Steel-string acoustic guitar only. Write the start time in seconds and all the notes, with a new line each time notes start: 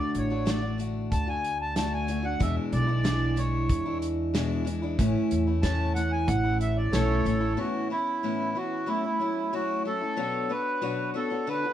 Already playing: D3 A3 D4 F#4
0.30 A3 D4 F#4
0.46 D3 A3 D4 F#4
0.61 A3 D4 F#4
0.78 D3 A3 D4 F#4
1.27 A3 D4 F#4
1.76 D3 A3 D4 F#4
2.07 D3 A3 D4 F#4
2.23 A3 D4 F#4
2.40 E2 B2 E3 G#3 D4 E4
2.87 E3 G#3 D4 E4
3.04 E2 B2 E3 G#3 D4 E4
3.36 E3 G#3 D4 E4
3.85 E3 G#3 D4 E4
4.34 E2 B2 E3 G#3 D4 E4
4.65 E3 G#3 D4 E4
4.82 E3 G#3 D4 E4
4.99 A2 E3 A3 C#4 E4
5.47 A3 C#4 E4
5.63 A2 E3 A3 C#4 E4
5.95 E3 A3 C#4 E4
6.43 A3 C#4 E4
6.93 A2 E3 A3 C#4 E4
7.24 E3 A3 C#4 E4
7.40 A3 C#4 E4
7.57 A2 E3 B3 C#4 E4
7.90 E3 B3 C#4 E4
8.23 A2 E3 B3 C#4 E4
8.55 E3 B3 C#4 E4
8.86 F#3 A3 C#4 E4
9.04 A3 C#4 E4
9.19 F#3 A3 C#4 E4
9.53 F#3 A3 C#4 E4
9.85 F#3 A3 C#4 E4
10.01 A3 C#4 E4
10.16 B2 F#3 B3 D4 F#4 C#5
10.49 B3 D4 F#4 C#5
10.81 B2 F#3 B3 D4 F#4 C#5
11.14 B3 D4 F#4 C#5
11.30 B3 D4 F#4 C#5
11.47 D3 D4 F#4 A4
11.64 D4 F#4 A4